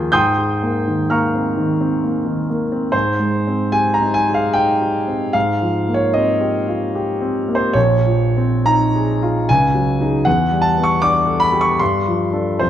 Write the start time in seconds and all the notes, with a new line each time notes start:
Already playing: D#2 F3 A#3 G#4 G5 C6 D#6 G6
0.12 G#2 G5 C6 D#6 G6
0.38 G#4
0.63 A#3
0.87 D#3
1.10 A#3 F5 A#5 C#6 F6
1.35 C4
1.57 D#3
1.80 C4
2.04 A#3
2.26 D#3
2.50 A#3
2.72 C4
2.92 G#2 C5
3.19 G#3
3.47 C4
3.72 G4 G#5
3.94 A#5
4.02 D#4
4.14 G#5
4.29 G#4
4.34 F5
4.53 D#4 G5
4.82 G4
5.08 C4
5.33 G#2 F5
5.61 F3
5.88 A#3
5.94 C#5
6.14 C4 D#5
6.41 G4
6.68 F4
6.95 G4
7.21 C4
7.48 A#3
7.55 C5
7.73 A#1 C#5
8.06 F3
8.37 C4
8.66 D#4 A#5
8.95 G#4
9.22 F4
9.49 C#2 G#5
9.74 F#3
10.01 D#4 G#4
10.25 E2 F#5
10.51 G3
10.62 A5
10.78 B3
10.84 C#6
11.02 D4 D6
11.27 A4
11.40 B5
11.53 G4
11.61 C#6
11.79 G2 C6
12.07 F3
12.33 D4 A4
12.59 F2 C5